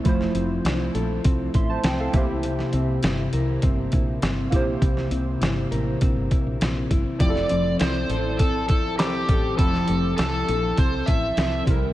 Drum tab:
HH |x-x-x-x-x-x-x-x-|x-x-x-x-x-x-x-x-|x-x-x-x-x-x-x-x-|x-x-x-x-x-x-x-x-|
SD |-o--o-------o---|-o--o-------o---|-o--o-------o---|-o--o-------o---|
BD |o-------o-o---o-|--------o-o---o-|o-------o-o---o-|o-------o-o---o-|

HH |x-x-x-x-x-x-x-x-|
SD |-o--o-------o---|
BD |o-------o-o---o-|